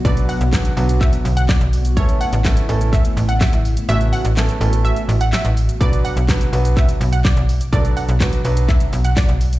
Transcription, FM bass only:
X:1
M:4/4
L:1/16
Q:1/4=125
K:Bm
V:1 name="FM bass" clef=bass
B,,,3 B,,,3 B,,,4 B,,,3 B,,,3 | A,,,3 A,,,3 A,,,4 A,,,3 A,,,3 | A,,,3 A,,,3 A,,,4 A,,,3 A,,,3 | B,,,3 B,,,3 B,,,4 B,,,3 B,,,3 |
B,,,3 B,,,3 B,,,4 B,,,3 B,,,3 |]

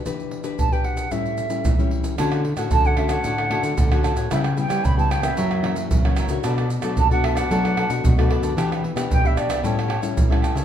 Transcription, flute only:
X:1
M:4/4
L:1/16
Q:1/4=113
K:D
V:1 name="Flute"
z4 a g f2 e6 z2 | z4 a f e f6- f z2 | e2 g2 b a g e6 z3 | z4 a f e f6- f z2 |
z4 g e d2 c6 z2 |]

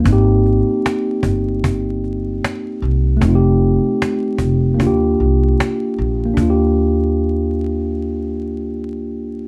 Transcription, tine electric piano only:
X:1
M:4/4
L:1/8
Q:"Swing 16ths" 1/4=76
K:Eb
V:1 name="Tine electric piano"
[B,CEG]8 | [=A,CEFG]4 [B,DFG]4 | [B,DFG]8 |]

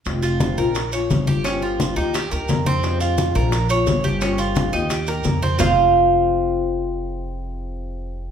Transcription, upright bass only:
X:1
M:4/4
L:1/8
Q:1/4=174
K:Fm
V:1 name="Upright bass" clef=bass
F,,,3 B,,,3 G,,,2- | G,,,3 E,,2 E,, F,,2- | F,,3 B,,,3 G,,,2- | G,,,3 E,,3 F,,2 |
F,,,8- | F,,,8 |]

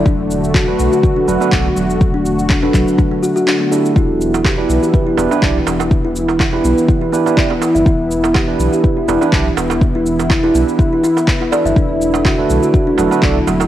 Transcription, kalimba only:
X:1
M:4/4
L:1/16
Q:"Swing 16ths" 1/4=123
K:Dmix
V:1 name="Kalimba"
D z3 F z2 F F D F, B, z2 F, z | z D z2 D D F, z D D F F D B, D z | E z3 G z2 G B E B, D z2 B, z | z E z2 E E B, z E E B, E E B, B, e |
E z3 G z2 G B E B, D z2 B, z | z E z2 E E B, z E E E B B E d e | D z3 F z2 F F D F, B, z2 F, z |]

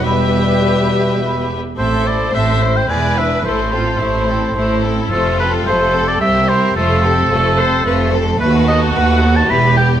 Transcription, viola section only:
X:1
M:3/4
L:1/8
Q:1/4=109
K:Em
V:1 name="Viola section"
G4- G z | [K:Am] A2 c2 B2 | A F E2 E2 | F2 A2 G2 |
F G A c B A | [K:Bphr] F4 G2 |]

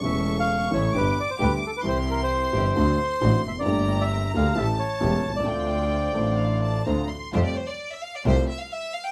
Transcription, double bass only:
X:1
M:4/4
L:1/8
Q:1/4=132
K:Dm
V:1 name="Double bass" clef=bass
E,,,3 A,,, G,,, z D,, z | C,,3 G,,, D,, z A,,, F,,, | G,,,3 D,, A,,, z E,,, C,, | D,,3 A,,,3 D,, z |
[K:F] F,, z3 C,, z3 |]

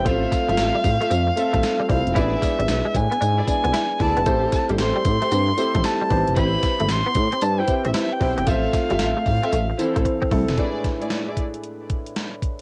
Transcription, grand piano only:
X:1
M:4/4
L:1/16
Q:"Swing 16ths" 1/4=114
K:Ephr
V:1 name="Grand piano"
[A,CFc]6 z4 [A,CFA]3 z [A,CEFc]2 | [G,^G,B,DEB]6 z4 [G,B,DEd]3 z [G,B,DEB]2 | [A,CEGc]6 z4 [A,CEGc]3 z [C^DEGBc]2- | [C^DEGBc]4 z6 [CEGBc]3 z [B,CEGc]2 |
[A,CFc]6 z4 [E,CA]3 z [CEA]2 | [A,,^G,DEB]16 |]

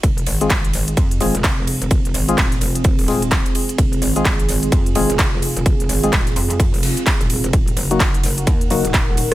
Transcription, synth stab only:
X:1
M:4/4
L:1/16
Q:"Swing 16ths" 1/4=128
K:Fphr
V:1 name="Synth stab"
z3 [A,CFA] z6 [A,CFA] z4 z | z3 [A,CFA] z6 [A,CFA] z4 z | z3 [A,CFA] z6 [A,CFA] z4 z | z3 [A,CFA] z12 |
z3 [G,B,EG] z6 [G,B,EG] z4 z |]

